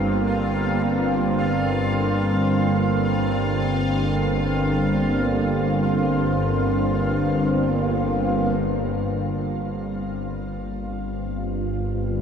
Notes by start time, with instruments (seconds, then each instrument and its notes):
Already playing: synth drone G1 G2, analog synth pad D3 A#3 C4, synth texture F4 F5
8.59 synth drone G1 G2, analog synth pad G3, synth texture F4 F5